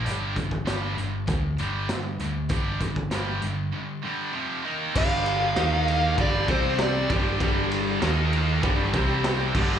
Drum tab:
CC |----------------|----------------|x---------------|--------------x-|
RD |----------------|----------------|--x-x-x-x-x-x-x-|x-x-x-x-x-x-x---|
HH |x-x-x-x-x-x-x-x-|x-x-x-x---------|----------------|----------------|
SD |----o-------o---|----o-----------|----o-------o---|----o-------o---|
BD |--oo----o-------|o-oo------------|o-------o-o---o-|o-------o-o---o-|